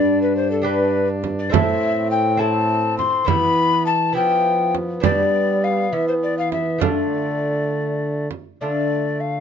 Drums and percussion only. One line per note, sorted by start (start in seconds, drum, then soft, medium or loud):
1.24 frame drum medium
1.54 frame drum medium
2.99 frame drum soft
3.28 frame drum medium
4.75 frame drum medium
5.03 frame drum medium
6.52 frame drum medium
6.81 frame drum medium
8.31 frame drum medium